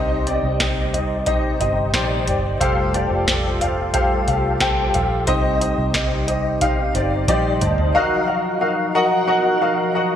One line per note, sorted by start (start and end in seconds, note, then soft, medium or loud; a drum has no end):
0.00 0.40 C2 medium
0.00 0.90 C3 medium
0.00 2.58 C3 medium
0.00 2.57 G3 medium
0.00 0.20 D#4 loud
0.00 2.58 D#4 medium
0.00 0.20 G4 medium
0.00 0.20 C5 medium
0.00 0.20 D#5 loud
0.27 0.53 D#4 medium
0.27 0.53 G4 medium
0.27 0.53 C5 medium
0.27 0.53 D5 medium
0.27 closed hi-hat medium
0.43 1.57 C2 medium
0.60 0.87 D#4 medium
0.60 0.87 G4 medium
0.60 0.87 C5 medium
0.60 0.87 D#5 medium
0.60 kick medium
0.60 snare loud
0.60 closed hi-hat medium
0.93 1.20 D#4 medium
0.93 1.20 G4 medium
0.93 1.20 C5 medium
0.93 1.20 D#5 medium
0.93 closed hi-hat medium
0.93 floor tom soft
1.26 1.53 D#4 medium
1.26 1.53 G4 medium
1.26 1.53 C5 medium
1.26 1.54 D#5 loud
1.26 kick medium
1.26 closed hi-hat medium
1.60 1.91 G1 medium
1.60 1.87 D#4 medium
1.60 1.87 G4 medium
1.60 1.87 C5 medium
1.60 1.87 D#5 medium
1.60 closed hi-hat medium
1.94 2.25 A#1 medium
1.94 2.20 D#4 medium
1.94 2.20 G4 medium
1.94 2.20 C5 medium
1.94 2.20 D5 loud
1.94 kick loud
1.94 snare loud
1.94 closed hi-hat medium
2.27 2.58 G1 medium
2.27 2.54 D#4 medium
2.27 2.54 G4 medium
2.27 2.54 C5 medium
2.27 2.54 D5 medium
2.27 closed hi-hat medium
2.27 floor tom medium
2.60 3.07 F1 medium
2.60 7.91 G3 medium
2.60 5.25 A3 medium
2.60 5.25 F4 medium
2.60 2.87 G4 loud
2.60 2.87 A4 medium
2.60 2.87 C5 medium
2.60 2.87 F5 loud
2.60 kick medium
2.60 closed hi-hat medium
2.94 3.20 G4 medium
2.94 3.20 A4 medium
2.94 3.20 C5 medium
2.94 3.20 D5 medium
2.94 closed hi-hat medium
3.11 4.24 F1 medium
3.27 3.54 G4 medium
3.27 3.54 A4 medium
3.27 3.54 C5 medium
3.27 3.54 D5 medium
3.27 kick medium
3.27 snare loud
3.27 closed hi-hat medium
3.61 3.87 G4 medium
3.61 3.87 A4 medium
3.61 3.87 C5 medium
3.61 3.87 F5 medium
3.61 closed hi-hat medium
3.61 floor tom medium
3.93 4.20 G4 medium
3.93 4.20 A4 medium
3.93 4.21 C5 medium
3.93 4.20 F5 loud
3.93 kick medium
3.93 closed hi-hat medium
4.28 4.91 C2 medium
4.28 4.54 G4 medium
4.28 4.54 A4 medium
4.28 4.54 C5 medium
4.28 4.54 F5 medium
4.28 closed hi-hat medium
4.60 4.87 G4 loud
4.60 4.87 A4 medium
4.60 4.87 C5 medium
4.60 4.87 G5 loud
4.60 kick medium
4.60 snare loud
4.60 closed hi-hat medium
4.94 5.28 A#1 medium
4.94 5.21 G4 medium
4.94 5.21 A4 medium
4.94 5.21 C5 medium
4.94 5.21 F5 medium
4.94 closed hi-hat medium
4.94 floor tom medium
5.27 5.74 C2 medium
5.27 7.92 C3 medium
5.27 6.24 C3 medium
5.27 7.92 D#4 medium
5.27 5.54 D#4 loud
5.27 5.54 G4 medium
5.27 5.54 C5 loud
5.27 5.54 D#5 loud
5.27 kick medium
5.27 closed hi-hat medium
5.61 5.87 D#4 medium
5.61 5.87 G4 medium
5.61 5.88 C5 medium
5.61 5.88 D#5 medium
5.61 closed hi-hat medium
5.78 6.91 C2 medium
5.94 6.21 D#4 medium
5.94 6.21 G4 medium
5.94 6.21 C5 medium
5.94 6.21 D#5 medium
5.94 kick medium
5.94 snare loud
5.94 closed hi-hat medium
6.27 6.54 D#4 medium
6.27 6.54 G4 medium
6.27 6.54 C5 medium
6.27 6.54 D#5 medium
6.27 closed hi-hat medium
6.61 6.88 D#4 medium
6.61 6.88 G4 medium
6.61 6.88 C5 medium
6.61 6.88 F5 loud
6.61 kick medium
6.61 closed hi-hat medium
6.95 7.26 G1 medium
6.95 7.21 D#4 medium
6.95 7.21 G4 medium
6.95 7.21 C5 medium
6.95 7.21 D5 medium
6.95 closed hi-hat medium
7.28 7.59 A#1 medium
7.28 7.55 D#4 loud
7.28 7.54 G4 loud
7.28 7.55 C5 medium
7.28 7.55 D5 loud
7.28 7.44 D#5 medium
7.28 kick loud
7.28 closed hi-hat medium
7.28 high tom medium
7.45 7.60 G5 medium
7.61 7.93 D2 medium
7.61 7.88 D#4 medium
7.61 7.88 G4 medium
7.61 7.88 C5 medium
7.61 7.88 D5 medium
7.61 7.93 A5 medium
7.61 closed hi-hat medium
7.61 mid tom medium
7.78 floor tom medium
7.94 8.91 D#3 medium
7.94 10.16 F3 medium
7.94 10.16 F#3 medium
7.94 10.16 D#4 medium
7.94 8.21 F#4 loud
7.94 8.21 A#4 medium
7.94 8.21 D#5 loud
7.94 8.21 F5 loud
8.28 8.54 F#4 medium
8.28 8.54 A#4 medium
8.28 8.54 D#5 medium
8.28 8.54 F5 medium
8.61 8.88 F#4 medium
8.61 8.88 A#4 medium
8.61 8.88 D#5 medium
8.61 8.88 F5 medium
8.95 9.21 F#4 loud
8.95 9.21 A#4 loud
8.95 9.21 D#5 loud
8.95 9.21 F#5 loud
9.28 9.54 F#4 medium
9.28 9.54 A#4 medium
9.28 9.54 D#5 medium
9.28 9.54 F#5 loud
9.62 9.88 F#4 medium
9.62 9.88 A#4 medium
9.62 9.88 D#5 medium
9.62 9.88 F5 medium
9.95 10.16 F#4 medium
9.95 10.16 A#4 medium
9.95 10.16 D#5 medium
9.95 10.16 F#5 loud